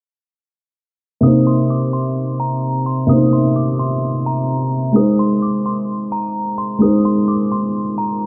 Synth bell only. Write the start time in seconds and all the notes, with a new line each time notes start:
1.23 D#6
1.47 C6
1.70 D6
1.93 C6
2.40 A#5
2.86 C6
3.09 D#6
3.33 C6
3.56 D6
3.79 C6
4.26 A#5
4.96 D#6
5.19 C6
5.42 D6
5.66 C6
6.12 A#5
6.58 C6
6.82 D#6
7.05 C6
7.28 D6
7.52 C6
7.98 A#5